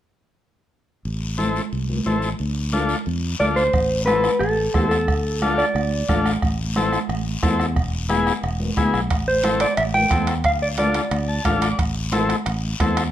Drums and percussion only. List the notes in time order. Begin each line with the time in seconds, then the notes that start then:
1.05 long guiro
1.39 high conga, short guiro
1.56 short guiro
1.73 long guiro
1.89 high conga
2.06 high conga, short guiro
2.22 short guiro
2.39 long guiro
2.72 high conga, short guiro
2.89 short guiro
3.06 long guiro
3.40 high conga, short guiro
3.57 short guiro
3.73 bombo low, bombo rim, long guiro
4.07 bombo rim, high conga, short guiro
4.24 bombo rim, short guiro
4.41 bombo rim, long guiro
4.74 bombo low, bombo rim, high conga, short guiro
4.91 bombo rim, short guiro
5.08 bombo low, bombo rim, long guiro
5.42 bombo rim, high conga, short guiro
5.59 bombo rim, short guiro
5.76 bombo rim, long guiro
6.09 bombo low, bombo rim, high conga, short guiro
6.26 bombo rim, short guiro
6.42 bombo low, bombo rim, long guiro
6.76 bombo rim, high conga, short guiro
6.93 bombo rim, short guiro
7.09 bombo rim, long guiro
7.43 bombo low, bombo rim, high conga, short guiro
7.60 bombo rim, short guiro
7.76 bombo low, bombo rim, long guiro
8.10 bombo rim, high conga, short guiro
8.27 bombo rim, short guiro
8.43 bombo rim, long guiro
8.60 high conga
8.77 bombo low, bombo rim, high conga, short guiro
8.94 bombo rim, short guiro
9.10 bombo low, bombo rim, high timbale, long guiro
9.44 bombo rim, high conga, high timbale, short guiro
9.60 bombo rim, high timbale, short guiro
9.77 bombo rim, high timbale, long guiro
9.94 high conga
10.11 bombo low, bombo rim, high conga, high timbale, short guiro
10.27 bombo rim, high timbale, short guiro
10.44 bombo low, bombo rim, high timbale, long guiro
10.78 bombo rim, high conga, high timbale, short guiro
10.94 bombo rim, high timbale, short guiro
11.11 bombo rim, high timbale, long guiro
11.45 bombo low, bombo rim, high conga, high timbale, short guiro
11.62 bombo rim, high timbale, short guiro
11.79 bombo low, bombo rim, high timbale, long guiro
12.12 bombo rim, high conga, high timbale, short guiro
12.29 bombo rim, high timbale, short guiro
12.46 bombo rim, high timbale, long guiro
12.80 bombo low, bombo rim, high conga, high timbale, short guiro
12.97 bombo rim, high timbale, short guiro